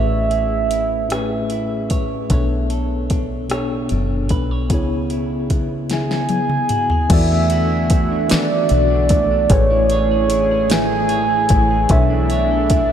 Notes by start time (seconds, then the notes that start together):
Already playing: A1 A2 E3 A3 C#4 G#4 B4 C#5 E5
0.30 G#4, closed hi-hat
0.71 E4, closed hi-hat
1.08 A2 A3 C#4 G#4 C#5, cross-stick, closed hi-hat
1.13 B4
1.50 E4, closed hi-hat
1.90 C#5, kick, closed hi-hat
2.29 B1 B2 B3 D4 A4 C#5, kick, closed hi-hat
2.34 C#5
2.70 A4, closed hi-hat
3.10 D4, kick, closed hi-hat
3.49 B2 B3 D4 A4 C#5, cross-stick, closed hi-hat
3.53 C#5
3.89 F#1 D4, closed hi-hat
4.29 B1 B4, kick, closed hi-hat
4.51 C#5
4.69 C#2 C#3 B3 E4 G#4, kick, closed hi-hat
4.74 C#5
5.10 E4, closed hi-hat
5.50 B3, kick, closed hi-hat
5.89 C#3 B3 E4 G#4 G#5, snare, closed hi-hat
5.94 E5
6.11 snare
6.29 B3, closed hi-hat, high tom
6.50 mid tom
6.69 F#4, closed hi-hat, mid tom
6.90 G#4, floor tom
7.09 E2 D3 E3 A3 B3 F#4 A4 E5, kick, closed hi-hat, crash
7.14 D5
7.31 A3
7.50 F#4, closed hi-hat
7.71 D4
7.90 A3, kick, closed hi-hat
8.11 D4
8.28 E3 B3 F#4 A4 D5, muted fingered electric bass stroke, snare, closed hi-hat
8.33 E5
8.51 A3
8.69 B1 F#4, closed hi-hat
8.90 D4
9.09 A3, kick, closed hi-hat
9.31 D4
9.49 A1 A2 E3 A3 G#4 B4 C#5, kick, closed hi-hat
9.53 C#5
9.71 E4
9.90 C#5, closed hi-hat
10.11 G#4
10.30 E4, closed hi-hat
10.51 G#4
10.69 A2 A3 G#4 B4 G#5, snare, closed hi-hat
10.74 E5
10.91 E4
11.09 C#5, closed hi-hat
11.30 G#4
11.49 A1 E4, kick, closed hi-hat
11.71 G#4
11.89 B1 B2 B3 D4 A4 E5, kick, closed hi-hat
11.93 C#5
12.10 D4
12.30 C#5, closed hi-hat
12.51 A4
12.70 D4, kick, closed hi-hat